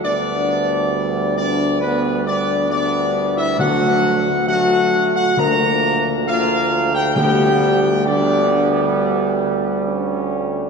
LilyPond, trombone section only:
\new Staff \with { instrumentName = "Trombone section" } { \time 4/4 \key g \lydian \tempo 4 = 67 << { b2 b4 b4 | a4 a4 bes4 bes4 | b4 b2 cis'4 | } \\ { g2 g4 g4 | fis4 fis4 f4 f4 | g4 g2. | } >> }